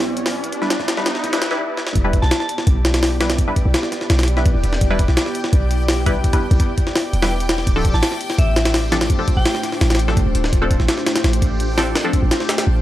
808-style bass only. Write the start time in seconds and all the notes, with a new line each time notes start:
Already playing: B1
0.80 B1
1.24 B1
1.96 E1
2.22 B1
2.67 B1
3.65 B1
4.10 B1
4.46 A1
4.55 E1
4.63 E1
4.81 E1
5.08 B1
5.53 B1
6.51 B1
7.13 E1
7.67 D1
7.94 A1
8.38 A1
9.37 A1
9.81 A1
10.17 G1
10.26 D1
10.35 D1
10.53 D1
10.80 A1
11.24 A1
12.23 A1
12.67 A1